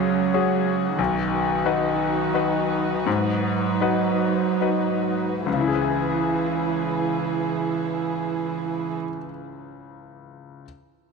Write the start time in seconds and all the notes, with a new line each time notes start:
Already playing: C#2 F#3 C#4 F#4 G#4
0.34 C#4 F#4 G#4
0.99 B1 D#3 D#4 B4
1.65 D#4 F#4 B4
2.34 D#4 F#4 B4
3.06 G#2 F#3
3.81 D#4 F#4 B4
4.61 D#4 F#4 B4
5.46 C#2 E3 E4 G#4 B4
5.53 C#3
5.60 E4
5.68 G#4
5.74 B4
5.81 G#5